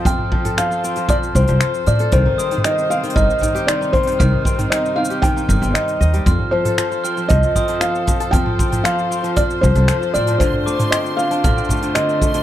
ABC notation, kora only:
X:1
M:4/4
L:1/16
Q:1/4=116
K:Fmix
V:1 name="Kora"
F2 F, A F, F C F, F, z C F, F2 F, A | E, E C E, E, z C E, E2 E, G E, E C E, | E, z C E, E2 E, G E, E E C E z e G, | F2 F, A F, F C F, F, z C F, F2 F, A |
F, F C F, F, z C F, F2 F, A F, F C F, | D, z A, D, C2 D, D D, C A, D, D, z A, D, |]